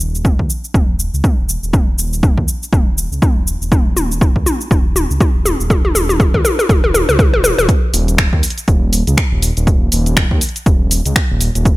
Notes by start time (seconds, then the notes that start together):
0.00 D#1, shaker
0.15 shaker
0.25 kick, mid tom, shaker
0.39 D#2, kick
0.50 shaker
0.64 shaker
0.74 D#1, kick, mid tom, shaker
1.00 shaker
1.13 C#2, shaker
1.24 kick, mid tom, shaker
1.38 D#1
1.49 shaker
1.63 D#1, shaker
1.73 kick, mid tom, shaker
1.98 D#1, shaker
2.13 shaker
2.23 kick, mid tom, shaker
2.38 D#2, kick
2.48 shaker
2.63 shaker
2.73 D#1, kick, mid tom, shaker
2.98 shaker
3.12 C#2, shaker
3.22 kick, mid tom, shaker
3.36 D#1
3.47 shaker
3.61 D#1, shaker
3.72 kick, mid tom, shaker
3.97 D#1, mid tom, shaker
4.12 shaker
4.21 kick, mid tom, shaker
4.36 D#2, kick
4.46 mid tom, shaker
4.61 shaker
4.71 D#1, kick, mid tom, shaker
4.96 mid tom, shaker
5.10 C#2, shaker
5.21 kick, mid tom, shaker
5.35 D#1
5.46 mid tom, shaker
5.60 D#1, shaker
5.70 kick, mid tom, shaker
5.85 mid tom
5.95 D#1, mid tom, shaker
6.09 mid tom, shaker
6.20 kick, mid tom, shaker
6.34 D#2, kick, mid tom
6.45 mid tom, shaker
6.59 mid tom, shaker
6.69 D#1, kick, mid tom, shaker
6.84 mid tom
6.94 mid tom, shaker
7.09 C#2, mid tom, shaker
7.19 kick, mid tom, shaker
7.34 D#1, mid tom
7.44 mid tom, shaker
7.58 D#1, mid tom, shaker
7.69 kick, closed hi-hat, shaker
7.93 D#1, open hi-hat, shaker
8.08 closed hi-hat, shaker
8.18 finger snap, kick, closed hi-hat, shaker
8.33 D#2, kick
8.43 open hi-hat, shaker
8.50 closed hi-hat
8.58 closed hi-hat, shaker
8.68 D#1, kick, closed hi-hat, shaker
8.93 open hi-hat, shaker
9.07 C#2, closed hi-hat, shaker
9.17 finger snap, kick, closed hi-hat, shaker
9.32 D#1
9.42 open hi-hat, shaker
9.57 D#1, closed hi-hat, shaker
9.67 kick, closed hi-hat, shaker
9.92 D#1, open hi-hat, shaker
10.06 closed hi-hat, shaker
10.17 finger snap, kick, closed hi-hat, shaker
10.31 D#2, kick
10.41 open hi-hat, shaker
10.49 closed hi-hat
10.56 closed hi-hat, shaker
10.66 D#1, kick, closed hi-hat, shaker
10.91 open hi-hat, shaker
11.06 C#2, closed hi-hat, shaker
11.16 finger snap, kick, closed hi-hat, shaker
11.31 D#1
11.41 open hi-hat, shaker
11.55 D#1, closed hi-hat, shaker
11.65 kick, closed hi-hat, shaker